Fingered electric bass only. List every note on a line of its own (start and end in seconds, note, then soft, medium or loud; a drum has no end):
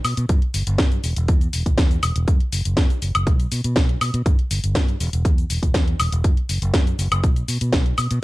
0.05 0.14 B2 medium
0.17 0.26 B2 loud
0.29 0.39 G2 loud
0.54 0.64 G1 medium
0.67 0.76 G1 medium
0.79 0.97 G2 medium
1.04 1.13 E1 loud
1.17 1.25 E1 medium
1.28 1.47 E2 loud
1.53 1.63 E1 medium
1.66 1.75 E1 medium
1.78 1.96 E2 medium
2.03 2.12 E1 medium
2.16 2.25 E1 medium
2.28 2.37 F#2 loud
2.41 muted fingered electric bass stroke soft
2.53 2.62 F#1 medium
2.65 2.74 F#1 medium
2.77 2.87 F#2 medium
3.02 3.12 F#1 medium
3.15 3.24 F#1 medium
3.27 3.45 B1 loud
3.52 3.61 B2 medium
3.65 3.73 B2 medium
3.76 3.95 B1 medium
4.01 4.11 B2 medium
4.14 4.23 B2 loud
4.26 4.35 G2 loud
4.51 4.60 G1 medium
4.64 4.73 G1 medium
4.75 4.94 G2 medium
5.01 5.10 E1 loud
5.13 5.22 E1 medium
5.25 5.43 E2 loud
5.50 5.59 E1 medium
5.63 5.72 E1 medium
5.75 5.93 E2 medium
6.00 6.09 E1 medium
6.12 6.21 E1 loud
6.24 6.34 F#2 loud
6.37 muted fingered electric bass stroke soft
6.49 6.59 F#1 medium
6.62 6.71 F#1 medium
6.74 6.92 F#2 medium
6.99 7.08 F#1 loud
7.11 7.20 F#1 medium
7.23 7.42 B1 loud
7.48 7.58 B2 medium
7.61 7.70 B2 medium
7.73 7.92 B1 medium
7.98 8.07 B2 medium
8.11 8.20 B2 loud